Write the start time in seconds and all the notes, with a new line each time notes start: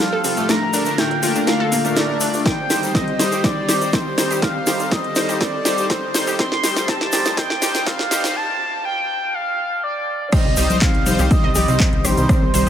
Already playing: F3 A3 C4 G4
0.00 F5, snare, closed hi-hat
0.13 F1 A4
0.24 D#1 G3 C4 F4 A4, open hi-hat, shaker
0.37 F1 G3 A3 F4 A4, closed hi-hat, shaker
0.49 D3 A3 A#3 D4 F4 A#4 A#5, snare, closed hi-hat, shaker
0.62 A#1
0.73 A#1 A3 D4 A#4, open hi-hat, shaker
0.85 A#1 A3 D4 A#4, closed hi-hat, shaker
0.98 A3 D4 A#4 G5, snare, closed hi-hat, shaker
1.11 A#1, closed hi-hat
1.23 A#1 A3 D4 F4 A#4, open hi-hat, shaker
1.35 A#1 A3 D4 A#4, closed hi-hat, shaker
1.47 A3 D4 A#4 F5, snare, closed hi-hat, shaker
1.60 A#1 A4
1.72 A#1 A#3, open hi-hat, shaker
1.85 A#1 A3 D4 A#4, closed hi-hat, shaker
1.96 A3 D5, snare, closed hi-hat, shaker
2.09 A#1 A3 D4 A#4
2.20 A#1 A3 D4 D5, open hi-hat, shaker
2.34 A#1, open hi-hat, shaker
2.46 D#3 G3 C4 D#4 G4 C5 G5, kick, snare, closed hi-hat, shaker
2.59 C2
2.70 C2 G3 D#4 G4 C5, snare, open hi-hat, shaker
2.83 C2 G3 D#4 C5, closed hi-hat, shaker
2.95 G3 C4 D#4 C5 D#5, kick, snare, closed hi-hat, shaker
3.08 C2, closed hi-hat
3.19 C2 G3 D#4 C5, snare, open hi-hat, shaker
3.32 C2 G3 D#4 G4 C5, closed hi-hat, shaker
3.44 G3 C4 D#4 C5 D5, kick, snare, closed hi-hat, shaker
3.57 C2
3.69 C2 G3 D#4 G4 C5, snare, open hi-hat, shaker
3.81 C2 G3 D#4 C5, closed hi-hat, shaker
3.93 G3 C4 D#4 C5, kick, snare, closed hi-hat, shaker
4.06 C2
4.18 A#1 G3 D#4 C5, snare, open hi-hat, shaker
4.31 C2 G3 D#4 G4 C5, closed hi-hat, shaker
4.42 G3 C4 D#4 A4 C5 F5, kick, snare, closed hi-hat, shaker
4.55 C2
4.67 C2 G3 D#4 G4 C5, snare, open hi-hat, shaker
4.80 C2 G3 D#4 C5, closed hi-hat, shaker
4.91 G3 C4 D#4 C5 D#5, kick, snare, closed hi-hat, shaker
5.04 C2, closed hi-hat
5.15 C2 G3 D#4 C5, snare, open hi-hat, shaker
5.29 C2 G3 D#4 G4 C5, closed hi-hat, shaker
5.41 C4 D5, kick, snare, closed hi-hat, shaker
5.54 C2
5.65 C2 G3 D#4 G4 C5, snare, open hi-hat, shaker
5.78 C2 G3 D#4 C5, closed hi-hat, shaker
5.90 G3 C4 D#4 C5, kick, snare, closed hi-hat, shaker
6.03 C2
6.14 A#1 G3 D#4 C5, snare, open hi-hat, shaker
6.27 C2 G3 D#4 G4 C5, open hi-hat, shaker
6.39 F3 G3 A3 C4 G4 C5 C6, kick, snare, closed hi-hat, shaker
6.52 snare
6.64 G3 D#4 G4 C5, snare, open hi-hat, shaker
6.76 G3 D#4 C5, snare, closed hi-hat, shaker
6.88 G3 C4 D#4 C5 A5, kick, snare, closed hi-hat, shaker
7.01 snare, closed hi-hat
7.12 G3 D#4 G4 C5, snare, open hi-hat, shaker
7.25 G3 D#4 C5, snare, closed hi-hat, shaker
7.37 G3 C4 D#4 C5 G5, kick, snare, closed hi-hat, shaker
7.50 snare
7.62 G3 D#4 G4 C5, snare, open hi-hat, shaker
7.75 G3 D#4 C5, snare, closed hi-hat, shaker
7.86 G3 C4 D#4 C5 F5, kick, snare, closed hi-hat, shaker
7.99 snare
8.11 G3 D#4 G4 C5, snare, open hi-hat, shaker
8.24 G3 D#4 C5, snare, closed hi-hat, shaker
8.36 A5
8.85 G5
9.34 F5
9.84 D5
10.32 D#3 G3 C4 D#4 G4 C5 D#5, kick, cross-stick, closed hi-hat, crash, shaker
10.45 C2, high conga
10.56 C2 G3 D#4 G4 C5, open hi-hat, shaker
10.70 C2 G3 D#4 C5, closed hi-hat, low conga, shaker
10.81 G3 C4 D#4 F5, kick, clap, closed hi-hat, shaker
10.94 C2, closed hi-hat, high conga
11.06 C2 G3 D#4 C5, open hi-hat, low conga, shaker
11.19 C2 G3 D#4 G4 C5, closed hi-hat, shaker
11.31 G3 D#4 C5 D#5, kick, closed hi-hat, high conga, shaker
11.44 C2 D#5
11.55 C2 G3 D#4 G4 D5, open hi-hat, low conga, shaker
11.68 C2 G3 C4 D#4 C5, closed hi-hat, high conga, shaker
11.80 C4 D#4, kick, clap, closed hi-hat, shaker
11.93 C2, closed hi-hat
12.05 A#1 G3 D#4 G4 C5, cross-stick, open hi-hat, high conga, shaker
12.17 C2 G3 D#4 C5, closed hi-hat, shaker
12.29 G3 A#3 C4 D#4 C5, kick, cross-stick, closed hi-hat, shaker
12.42 C2, high conga
12.54 C2 G3 D#4 C5, open hi-hat, shaker